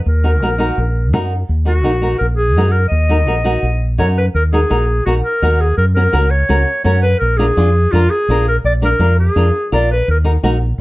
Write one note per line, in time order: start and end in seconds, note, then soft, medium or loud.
0.06 0.41 D#2 medium
0.06 1.11 A#4 medium
0.24 0.30 D#4 medium
0.24 0.30 F#4 medium
0.24 0.31 A#4 medium
0.41 0.70 A#1 medium
0.41 0.48 D#4 medium
0.41 0.49 F#4 medium
0.41 0.49 A#4 medium
0.58 0.78 D#4 medium
0.58 0.78 F#4 medium
0.58 0.79 A#4 medium
0.78 1.14 A#1 loud
1.13 1.42 F#2 loud
1.13 1.32 D#4 medium
1.13 1.32 F#4 medium
1.13 1.32 A#4 medium
1.49 1.85 D#2 loud
1.65 1.72 D#4 medium
1.65 1.73 F#4 medium
1.65 2.17 F#4 medium
1.65 1.73 A#4 medium
1.84 2.14 A#1 medium
1.84 1.91 D#4 medium
1.84 1.91 F#4 medium
1.84 1.91 A#4 medium
2.01 2.21 D#4 medium
2.01 2.21 F#4 medium
2.01 2.22 A#4 medium
2.18 2.56 A#1 medium
2.18 2.27 A#4 medium
2.37 2.73 G#4 loud
2.56 2.85 F#2 loud
2.56 2.75 D#4 medium
2.56 2.76 F#4 medium
2.56 2.76 A#4 medium
2.72 2.88 A#4 medium
2.89 3.27 D#2 medium
2.89 3.94 D#5 loud
3.09 3.16 D#4 medium
3.09 3.16 F#4 medium
3.09 3.17 A#4 medium
3.27 3.56 A#1 medium
3.27 3.34 D#4 medium
3.27 3.34 F#4 medium
3.27 3.34 A#4 medium
3.44 3.64 D#4 medium
3.44 3.64 F#4 medium
3.44 3.64 A#4 medium
3.63 4.00 A#1 medium
3.98 4.27 F#2 medium
3.98 4.17 D#4 medium
3.98 4.18 F#4 medium
3.98 4.18 A#4 medium
3.98 4.07 C#5 medium
4.18 4.26 B4 medium
4.34 4.63 D#2 medium
4.34 4.43 A#4 medium
4.53 4.59 D#4 medium
4.53 4.59 F#4 medium
4.53 5.03 G#4 medium
4.53 4.60 A#4 medium
4.70 4.99 A#1 loud
4.70 4.83 D#4 medium
4.70 4.83 F#4 medium
4.70 4.83 A#4 medium
5.06 5.21 A#1 medium
5.06 5.19 D#4 medium
5.06 5.14 F#4 medium
5.06 5.19 F#4 medium
5.06 5.19 A#4 medium
5.24 5.62 A#4 medium
5.42 5.71 D#2 medium
5.42 5.61 D#4 medium
5.42 5.61 F#4 medium
5.42 5.62 A#4 medium
5.61 5.77 G#4 medium
5.77 6.06 F#2 medium
5.77 5.86 A#4 medium
5.95 6.02 C#4 medium
5.95 6.03 F#4 medium
5.95 6.32 A#4 medium
5.95 6.03 A#4 medium
6.12 6.42 C#2 medium
6.12 6.26 C#4 medium
6.12 6.26 F#4 medium
6.12 6.26 A#4 medium
6.31 6.84 C#5 medium
6.49 6.64 C#2 medium
6.49 6.62 C#4 medium
6.49 6.62 F#4 medium
6.49 6.62 A#4 medium
6.84 7.14 F#2 medium
6.84 7.03 C#4 medium
6.84 7.04 F#4 medium
6.84 7.04 A#4 medium
6.84 7.02 C#5 medium
7.03 7.19 B4 loud
7.20 7.50 A#1 medium
7.20 7.39 A#4 medium
7.37 7.45 D4 medium
7.37 7.45 F4 medium
7.37 7.93 G#4 medium
7.37 7.46 A#4 medium
7.57 7.85 F2 loud
7.57 7.69 D4 medium
7.57 7.70 F4 medium
7.57 7.70 G#4 medium
7.91 8.07 F2 medium
7.91 8.05 D4 medium
7.91 8.12 F4 loud
7.91 8.05 F4 medium
7.91 8.06 A#4 medium
8.10 8.46 G#4 loud
8.28 8.57 A#1 medium
8.28 8.48 D4 medium
8.28 8.48 F4 medium
8.28 8.48 A#4 medium
8.49 8.56 A#4 medium
8.64 8.93 A#1 medium
8.64 8.73 D5 loud
8.82 8.88 D4 medium
8.82 8.88 F4 medium
8.82 8.88 A#4 medium
8.82 9.17 A#4 loud
8.99 9.28 F2 loud
8.99 9.12 D4 medium
8.99 9.12 F4 medium
8.99 9.13 A#4 medium
9.20 9.69 G#4 medium
9.36 9.50 F2 medium
9.36 9.48 D4 medium
9.36 9.48 F4 medium
9.36 9.49 A#4 medium
9.72 10.00 A#1 medium
9.72 9.91 D4 medium
9.72 9.90 F4 medium
9.72 9.91 A#4 medium
9.72 9.89 D5 medium
9.92 10.07 B4 medium
10.08 10.36 D#2 loud
10.08 10.18 A#4 medium
10.24 10.31 D#4 medium
10.24 10.31 F#4 medium
10.24 10.31 A#4 medium
10.43 10.72 A#1 loud
10.43 10.56 D#4 medium
10.43 10.56 F#4 medium
10.43 10.56 A#4 medium